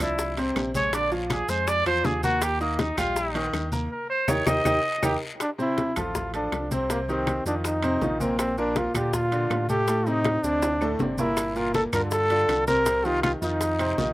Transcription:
0.00 C2 F3 D4 E4 D5, high bongo, high conga, low conga, high timbale, short guiro, claves, maracas
0.19 high bongo, high conga, long guiro, maracas
0.37 C3 C4 C5, high bongo, high conga, high timbale, maracas
0.55 A#1, high bongo, low bongo, high conga, high timbale, low timbale, short guiro, claves, maracas
0.74 G#3 G#4 C#5 G#5, high conga, short guiro, maracas
0.93 D3 D4 D5, high bongo, high conga, high timbale, long guiro, maracas
1.11 F3 F4 F5, high bongo, high conga, maracas
1.30 G#4, high bongo, high conga, high timbale, short guiro, claves, maracas
1.48 F2 G#3 G#4 C5 G#5, high bongo, high conga, short guiro, maracas
1.67 D5, high bongo, high conga, high timbale, long guiro, maracas
1.85 E2 F3 F4 C5 F5, high bongo, high conga, high timbale, claves, maracas
2.04 D#2 G#4, high bongo, low bongo, high conga, low timbale, short guiro, maracas
2.23 A#3 F#4 A#4 A#5, high conga, short guiro, maracas
2.42 G4, high bongo, high conga, high timbale, long guiro, claves, maracas
2.60 A#3 D#4 D#5 D#6, high bongo, high conga, maracas
2.79 D#4, high bongo, high conga, high timbale, short guiro, maracas
2.97 A#1 G3 F4 G4 G5, high bongo, high conga, low conga, high timbale, short guiro, claves, maracas
3.16 high bongo, high conga, long guiro, maracas
3.35 D#3 D#4 D#5, high bongo, high conga, high timbale, maracas
3.53 D#2, high bongo, low bongo, high conga, high timbale, short guiro, claves, maracas
3.72 A#3 A#4 A#5, high conga, short guiro, maracas
3.92 A#4
4.10 C5
4.28 D#2 D#4 G4 A#4 C#5, high bongo, high conga, high timbale, long guiro, claves, maracas
4.46 D#2 D#4 G4 A#4 D#5, high bongo, high conga, high timbale, long guiro, claves, maracas
4.65 D#2 D#4 G4 A#4, high bongo, high conga, high timbale, long guiro, claves, maracas
5.03 D#2 D#4 G4 A#4, high bongo, high conga, high timbale, long guiro, claves, maracas
5.40 D4, high bongo, high conga, high timbale, claves, maracas
5.58 C3 C4 E4 C5, high bongo, high conga, maracas
5.78 high bongo, high conga, high timbale, maracas
5.96 A1 F3 F4 A4, high bongo, high conga, low conga, high timbale, claves, maracas
6.15 high bongo, high conga, low conga, maracas
6.34 F3 D4 F4 A4, high bongo, high conga, high timbale, maracas
6.52 C2, high bongo, low bongo, high conga, high timbale, claves, maracas
6.71 C3 C4 C5, high conga, maracas
6.90 C3 A#3 C4 C5, high bongo, high conga, high timbale, maracas
7.08 D#3 C4 D#4 G4, high bongo, high conga, maracas
7.27 high bongo, high conga, high timbale, claves, maracas
7.45 F2 D#3 D4 D#4 F4, high bongo, high conga, maracas
7.64 D#4, high bongo, high conga, high timbale, maracas
7.83 C3 C4 C5, high bongo, high conga, high timbale, claves, maracas
8.01 A#1 D#3 D#4 F4, high bongo, low bongo, high conga, low timbale, maracas
8.20 A#2 A#3 C4 A#4, high conga, maracas
8.39 C4, high bongo, high timbale, claves, maracas
8.57 A#2 A#3 D4 A#4, high bongo, high conga, maracas
8.76 F4, high bongo, high conga, high timbale, maracas
8.94 A#2 D3 D4 F4 G4, high bongo, high conga, low conga, high timbale, claves, maracas
9.13 F4, high bongo, high conga, low conga, maracas
9.32 D3 D4 F4, high bongo, high conga, high timbale, maracas
9.50 A2, high bongo, low bongo, high conga, high timbale, low timbale, claves, maracas
9.69 A2 A3 G4 A4, high conga, maracas
9.88 A2 A3 A4, high bongo, high timbale, maracas
10.06 C3 C4 D#4, high bongo, high conga, maracas
10.24 high bongo, high conga, high timbale, claves, maracas
10.43 D2 C3 C4 D4, high bongo, high conga, maracas
10.62 high bongo, high conga, high timbale, maracas
10.81 A2 A3 A4, high bongo, high conga, high timbale, claves, maracas
10.99 G1 C3 C4 D4, high bongo, low bongo, high conga, low timbale, maracas
11.18 A#2 A#3 E4 A#4, high conga, low timbale, maracas
11.37 high bongo, high conga, high timbale, long guiro, claves, maracas
11.56 A#2 A#3 F4 A#4, high bongo, high conga, maracas
11.74 A4, high bongo, high conga, high timbale, short guiro, maracas
11.93 G2 D3 D4 F4 A#4, high bongo, high conga, low conga, high timbale, short guiro, claves, maracas
12.11 A4, high bongo, high conga, long guiro, maracas
12.30 D3 D4 F4, high bongo, high conga, high timbale, maracas
12.48 C2, high bongo, low bongo, high conga, high timbale, short guiro, claves, maracas
12.67 C3 C4 A#4 C5, high conga, short guiro, maracas
12.86 C3 C4 C5, high bongo, high conga, high timbale, long guiro, maracas
13.05 D#3 D#4 F4 G4, high bongo, high conga, maracas
13.23 F4, high bongo, high conga, high timbale, short guiro, claves, maracas
13.41 F2 D#3 D#4 F4, high bongo, high conga, short guiro, maracas
13.61 high bongo, high conga, high timbale, long guiro, maracas
13.79 C3 C4 C5, high bongo, high conga, high timbale, claves, maracas
13.97 A#1 D#3 D#4 F4, high bongo, low bongo, high conga, low timbale, short guiro, maracas

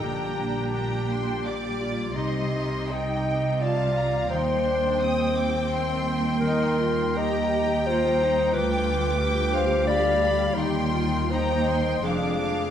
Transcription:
Already playing: A#3 D4 G4 G5 A#5
0.02 A#1 A#2 D4 G4
0.27 G3
0.38 D4
0.50 A#3
0.73 D4 G5 A#5
0.97 G4
1.10 C6
1.22 D4
1.45 A#3 G4 D5 D6
1.70 G3
1.80 F4
1.93 A#3
2.15 C2 C3 D#4 G4 D#5 C6
2.41 G3
2.53 D#4
2.67 A#3
2.91 D#4 D#5 G5
3.16 G4
3.39 D#4
3.61 A#3 F4 D5 F5 A5
3.86 G3
3.97 A#5
4.09 A#3
4.30 D#2 D#3 D#4 C5 G5 C6
4.55 G3
4.66 D4
4.79 D#4
5.01 C4 G4 D#6
5.26 D#4
5.36 D6
5.49 G4
5.70 D#4 C6
5.95 G3
6.17 D#4
6.40 D#3 D#4 A#4 C6
6.66 G3
6.78 F4
6.92 D#4
7.16 G4 D#5 G5 A#5
7.41 D#4
7.52 G4
7.64 G4
7.85 D#4 F4 C5 A#5
8.09 G3
8.20 D#4
8.32 D#4
8.54 D2 D3 F4 B4 G5 D6
8.77 D4
8.99 G3
9.20 F4 G4 G5
9.43 G4
9.53 C5 F5
9.65 F4
9.87 G3 D5 F5 B5
10.10 D4
10.21 B5
10.32 G3
10.54 D#2 D#3 D#4 G4 G5 C6
10.79 G3
10.92 F4
11.05 D#4
11.31 D#4 C5 G5 A#5
11.56 G4
11.69 C6
11.80 C5
12.03 F1 F2 D4 G#4 F5 D6
12.28 G#3
12.40 F5
12.53 D4 D5

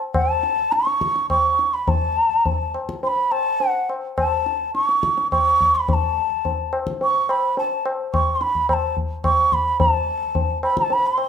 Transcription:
0.14 A5, tabla na, tabla ge
0.43 tabla te
0.72 C#6, tabla te
0.87 tabla te
1.01 tabla ke
1.16 tabla te
1.30 C#6, tabla na, tabla ge
1.59 tabla te
1.74 B5
1.88 A5, tabla tin, tabla ge
2.45 tabla tin, tabla ge
2.74 tabla na
2.89 tabla ke
3.03 C6, tabla tin
3.07 B5
3.31 A5, tabla na
3.60 tabla tin
3.70 F#5
3.89 tabla na
4.18 A5, tabla na, tabla ge
4.46 tabla te
4.74 C#6, tabla te
4.89 tabla te
5.03 tabla ke
5.18 tabla te
5.31 C#6, tabla na, tabla ge
5.61 tabla ge
5.75 B5
5.88 B5, tabla tin, tabla ge
5.93 A5
6.45 tabla tin, tabla ge
6.73 tabla na
6.87 tabla ke
7.01 C#6, tabla tin
7.29 B5, tabla na
7.57 A5, tabla tin
7.86 tabla na
8.14 C#6, tabla na, tabla ge
8.36 C6
8.41 B5, tabla te
8.55 tabla ge
8.69 B5, tabla na, tabla ge
8.73 A5
8.97 tabla ge
9.24 C#6, tabla na, tabla ge
9.52 B5, tabla ge
9.80 A5, tabla tin, tabla ge
10.35 tabla tin, tabla ge
10.63 B5, tabla na
10.77 A5, tabla ke
10.90 B5, tabla tin
11.07 C6
11.18 tabla na

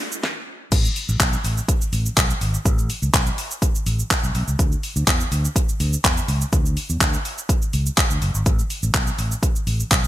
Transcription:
0.12 shaker
0.23 kick, snare
0.72 A1, kick, closed hi-hat, crash, shaker
0.85 shaker
0.96 open hi-hat, shaker
1.09 A1, shaker
1.20 B1, kick, clap, closed hi-hat, shaker
1.33 shaker
1.44 A1, open hi-hat, shaker
1.57 shaker
1.68 kick, closed hi-hat, shaker
1.82 shaker
1.93 A1, open hi-hat, shaker
2.06 shaker
2.17 B1, kick, clap, closed hi-hat, shaker
2.30 shaker
2.41 G#1, open hi-hat, shaker
2.54 shaker
2.65 A1, kick, closed hi-hat, shaker
2.79 shaker
2.90 open hi-hat, shaker
3.02 C#2, shaker
3.14 B1, kick, clap, closed hi-hat, shaker
3.27 shaker
3.38 open hi-hat, shaker
3.51 shaker
3.62 kick, closed hi-hat, shaker
3.75 shaker
3.86 A1, open hi-hat, shaker
3.99 shaker
4.11 kick, clap, closed hi-hat, shaker
4.23 B1, shaker
4.35 B1, open hi-hat, shaker
4.48 C#2, shaker
4.59 D2, kick, closed hi-hat, shaker
4.72 shaker
4.83 open hi-hat, shaker
4.96 D2, shaker
5.07 E2, kick, clap, closed hi-hat, shaker
5.20 shaker
5.32 D2, open hi-hat, shaker
5.45 shaker
5.56 kick, closed hi-hat, shaker
5.69 shaker
5.80 D2, open hi-hat, shaker
5.93 shaker
6.04 E2, kick, clap, closed hi-hat, shaker
6.17 shaker
6.28 C#2, open hi-hat, shaker
6.41 shaker
6.53 D2, kick, closed hi-hat, shaker
6.66 shaker
6.77 open hi-hat, shaker
6.90 E2, shaker
7.01 D2, kick, clap, closed hi-hat, shaker
7.14 shaker
7.25 open hi-hat, shaker
7.38 shaker
7.49 kick, closed hi-hat, shaker
7.62 shaker
7.73 C#2, open hi-hat, shaker
7.86 shaker
7.98 kick, clap, closed hi-hat, shaker
8.11 D2, shaker
8.22 F#1, open hi-hat, shaker
8.35 G#1, shaker
8.46 A1, kick, closed hi-hat, shaker
8.59 shaker
8.70 open hi-hat, shaker
8.83 A1, shaker
8.94 B1, kick, clap, closed hi-hat, shaker
9.07 shaker
9.19 A1, open hi-hat, shaker
9.32 shaker
9.43 kick, closed hi-hat, shaker
9.56 shaker
9.67 A1, open hi-hat, shaker
9.80 shaker
9.91 B1, kick, clap, closed hi-hat, shaker
10.04 shaker

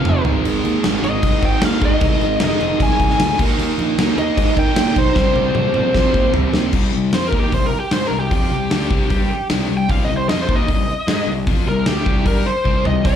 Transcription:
Already playing: F2 C3 F3 F5
0.05 F1, mid tom
0.24 G#1 G#2 D#3 G#3, floor tom
0.45 G#1, crash
0.64 D#2, crash
0.84 G#1 G#2 D#3 G#3, snare, crash
1.03 G#1 G#2 D#3 G#3 D#5, crash
1.23 C2, kick, crash
1.42 G#2 G5, kick, crash
1.62 D#2 F5, snare, crash
1.81 G#2 D#3 G#3, kick, crash
1.85 D#5
2.01 C2, kick, crash
2.21 G#1, crash
2.40 F1 G#2 D#3 G#3, snare, crash
2.45 D#5
2.60 F1 G#2 D#3 G#3, crash
2.80 C2 G#5, kick, crash
2.99 C2, kick, crash
3.10 snare
3.20 D2, snare, crash
3.39 D#2 D#3 A#3 D#4, kick, crash
3.58 D#2, crash
3.78 A#1, crash
3.98 D#2 D#3 A#3 D#4, snare, crash
4.17 D#2 D#3 A#3 D#4 D#5, crash
4.37 G#2, kick, crash
4.57 D#3 G5, kick, crash
4.76 A#2, snare, crash
4.96 B1 C5, kick, crash
5.15 C2 C3 G3 C4, kick, snare
5.36 C2, high tom
5.55 A#1, mid tom
5.74 A#1 C3 G3 C4, mid tom
5.94 F2 C3 G3 C4, kick, snare
6.14 D#2, kick
6.34 C2, floor tom
6.53 D#2, snare
6.73 C2 C3 G3 C4, kick, crash
6.93 C2 C3 G3
7.13 F2 F3 C4 F4 C5, snare, open hi-hat
7.27 A#4
7.32 D#2 D#3 A#3 D#4, kick
7.39 G4
7.52 C2 C3 G3 C5, kick, open hi-hat
7.66 A#4
7.80 G4
7.91 G#2 G#3 D#4 G#4 C5, snare, open hi-hat
8.07 C2 A#4
8.12 C3 G3
8.20 G4
8.31 F2 F3 C4 F4 G4, kick, open hi-hat
8.50 C2 C3 G3
8.70 D2 D3 A3 D4, snare, open hi-hat
8.90 C2 C3 G3 C4, kick
9.10 G2 G3 D4 G4, kick, open hi-hat
9.29 muted picked electric bass stroke, muted distorted electric guitar stroke
9.50 C2 C3 G3 C4, snare, open hi-hat
9.69 C2 C3 G3
9.77 G5
9.89 C2 C3 G3 C4 F5, kick, open hi-hat
10.05 D#5
10.09 C2 C3 G3
10.17 C5
10.28 F2 F3 C4 F4 D#5, snare, open hi-hat
10.42 C5
10.48 D#2 D#3 A#3 D#4, kick
10.56 D#5
10.68 C2 C3 G3, kick, open hi-hat
11.07 G#2 G#3 D#4 G#4, snare, open hi-hat
11.27 C2 C3 G3
11.47 F2 F3 C4 F4, kick, open hi-hat
11.66 C2 C3 G3 A#4
11.86 D2 D3 A3 D4 G4, snare, open hi-hat
12.06 C2 C3 G3 C4, kick
12.26 G2 G3 D4 G4 A#4, kick, open hi-hat
12.46 C5, muted distorted electric guitar stroke, muted picked electric bass stroke
12.64 C2 C3 G3 C4, kick
12.85 C2 C3 G3 D#5, floor tom
13.04 C2 C3 G3 C4 D#5, kick, open hi-hat

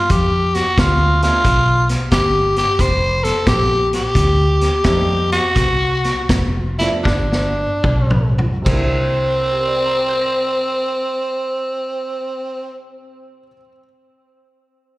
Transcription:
Already playing: F4
0.09 F2 G4, kick, closed hi-hat
0.55 F#4, snare, closed hi-hat
0.78 D2 F4, kick, snare, closed hi-hat
1.22 A3 B3 D4 F4, snare, closed hi-hat
1.44 B1, kick, closed hi-hat
1.89 snare, closed hi-hat
2.11 G1 G4, kick, snare, closed hi-hat
2.56 G4, snare, closed hi-hat
2.79 F1 C5, kick, snare, closed hi-hat
3.24 A4, snare, closed hi-hat
3.46 A#1 G4, kick, snare, closed hi-hat
3.93 G4, snare, closed hi-hat
4.15 D2, kick, snare, closed hi-hat
4.61 snare, closed hi-hat
4.84 F2 G3 A3 C4 D#4 G4, kick, snare, closed hi-hat
5.32 F#4, snare, closed hi-hat
5.55 C2, kick, snare, closed hi-hat
6.04 snare, closed hi-hat
6.29 F1, kick, snare, closed hi-hat
6.79 F3 A3 B3 D4 E4, snare, closed hi-hat
7.04 G1 D4, kick, snare
7.32 snare
7.84 B1, kick, mid tom
8.10 mid tom
8.38 floor tom
8.62 C3 G3 C4
8.66 C2 A#3, kick, crash
8.70 D4 E4
9.51 G4
9.59 A#4
9.67 D5
9.76 G5
9.86 A#5
9.97 D6
10.09 G6
10.21 A#6

